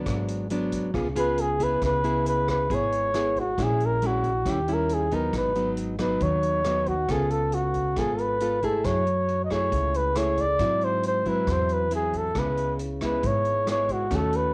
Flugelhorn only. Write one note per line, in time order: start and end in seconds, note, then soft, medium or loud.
1.19 1.42 B4 medium
1.41 1.65 G#4 medium
1.64 1.84 B4 medium
1.86 2.25 B4 medium
2.28 2.47 B4 medium
2.50 2.76 B4 medium
2.75 3.41 C#5 medium
3.40 3.64 F#4 medium
3.63 3.87 G#4 medium
3.86 4.08 A#4 medium
4.07 4.52 F#4 medium
4.50 4.75 G4 medium
4.73 4.95 A#4 medium
4.94 5.16 G#4 medium
5.15 5.35 A#4 medium
5.37 5.71 B4 medium
6.01 6.24 B4 medium
6.23 6.89 C#5 medium
6.88 7.13 F#4 medium
7.12 7.33 G#4 medium
7.31 7.56 A4 medium
7.54 8.00 F#4 medium
7.99 8.22 G#4 medium
8.21 8.66 B4 medium
8.65 8.87 A4 medium
8.85 9.44 C#5 medium
9.44 9.54 D#5 medium
9.52 9.98 C#5 medium
9.96 10.19 B4 medium
10.18 10.42 C#5 medium
10.41 10.86 D5 loud
10.84 11.05 C5 medium
11.07 11.30 C5 medium
11.29 11.53 B4 medium
11.52 11.75 C5 medium
11.73 11.93 B4 medium
11.95 12.19 G#4 medium
12.18 12.41 A4 medium
12.39 12.76 B4 medium
13.05 13.28 B4 medium
13.27 13.69 C#5 medium
13.71 13.94 C#5 medium
13.93 14.17 F#4 medium
14.15 14.38 A4 medium
14.36 14.54 B4 medium